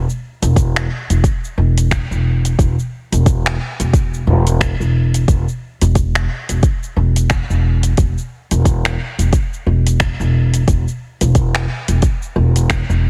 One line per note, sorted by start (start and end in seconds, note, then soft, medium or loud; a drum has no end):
0.10 cabasa soft
0.42 0.85 E1 loud
0.42 closed hi-hat medium
0.42 cabasa medium
0.56 kick loud
0.56 closed hi-hat soft
0.56 cabasa medium
0.76 finger snap medium
0.76 cabasa soft
1.10 1.21 E1 medium
1.10 closed hi-hat medium
1.10 cabasa medium
1.24 kick loud
1.24 closed hi-hat soft
1.24 cabasa medium
1.45 cabasa soft
1.58 2.04 E1 loud
1.78 closed hi-hat medium
1.78 cabasa medium
1.91 finger snap medium
1.91 kick loud
1.91 closed hi-hat soft
1.91 cabasa medium
2.11 2.54 E1 medium
2.11 cabasa soft
2.45 closed hi-hat medium
2.45 cabasa medium
2.59 2.74 E1 medium
2.59 kick loud
2.59 closed hi-hat soft
2.59 cabasa medium
2.79 cabasa soft
3.12 3.55 E1 medium
3.12 closed hi-hat medium
3.12 cabasa medium
3.26 kick loud
3.26 closed hi-hat soft
3.26 cabasa medium
3.46 finger snap medium
3.46 cabasa soft
3.80 4.22 E1 medium
3.80 closed hi-hat medium
3.80 cabasa medium
3.93 kick loud
3.93 closed hi-hat soft
3.93 cabasa medium
4.14 cabasa soft
4.27 4.74 E1 loud
4.47 closed hi-hat medium
4.47 cabasa medium
4.61 finger snap medium
4.61 kick loud
4.61 closed hi-hat soft
4.61 cabasa medium
4.80 5.23 E1 medium
4.80 cabasa soft
5.14 closed hi-hat medium
5.14 cabasa medium
5.28 5.44 E1 medium
5.28 kick loud
5.28 closed hi-hat soft
5.28 cabasa medium
5.49 cabasa soft
5.81 6.25 E1 loud
5.81 closed hi-hat medium
5.81 cabasa medium
5.95 kick loud
5.95 closed hi-hat soft
5.95 cabasa medium
6.15 finger snap medium
6.15 cabasa soft
6.49 6.60 E1 medium
6.49 closed hi-hat medium
6.49 cabasa medium
6.63 kick loud
6.63 closed hi-hat soft
6.63 cabasa medium
6.83 cabasa soft
6.96 7.44 E1 loud
7.16 closed hi-hat medium
7.16 cabasa medium
7.30 finger snap medium
7.30 kick loud
7.30 closed hi-hat soft
7.30 cabasa medium
7.50 7.93 E1 medium
7.50 cabasa soft
7.83 closed hi-hat medium
7.83 cabasa medium
7.97 8.14 E1 medium
7.97 kick loud
7.97 closed hi-hat soft
7.97 cabasa medium
8.18 cabasa soft
8.51 8.94 E1 loud
8.51 closed hi-hat medium
8.51 cabasa medium
8.65 kick loud
8.65 closed hi-hat soft
8.65 cabasa medium
8.85 finger snap medium
8.85 cabasa soft
9.19 9.30 E1 medium
9.19 closed hi-hat medium
9.19 cabasa medium
9.33 kick loud
9.33 closed hi-hat soft
9.33 cabasa medium
9.54 cabasa soft
9.67 10.13 E1 loud
9.87 closed hi-hat medium
9.87 cabasa medium
10.00 finger snap medium
10.00 kick loud
10.00 closed hi-hat soft
10.00 cabasa medium
10.20 10.63 E1 medium
10.20 cabasa soft
10.54 closed hi-hat medium
10.54 cabasa medium
10.68 10.83 E1 medium
10.68 kick loud
10.68 closed hi-hat soft
10.68 cabasa medium
10.88 cabasa soft
11.21 11.64 E1 loud
11.21 closed hi-hat medium
11.21 cabasa medium
11.35 kick loud
11.35 closed hi-hat soft
11.35 cabasa medium
11.55 finger snap medium
11.55 cabasa soft
11.88 11.99 E1 medium
11.88 closed hi-hat medium
11.88 cabasa medium
12.02 kick loud
12.02 closed hi-hat soft
12.02 cabasa medium
12.23 cabasa soft
12.36 12.83 E1 loud
12.56 closed hi-hat medium
12.56 cabasa medium
12.70 finger snap medium
12.70 kick medium
12.70 closed hi-hat soft
12.70 cabasa medium
12.89 13.10 E1 medium
12.89 cabasa soft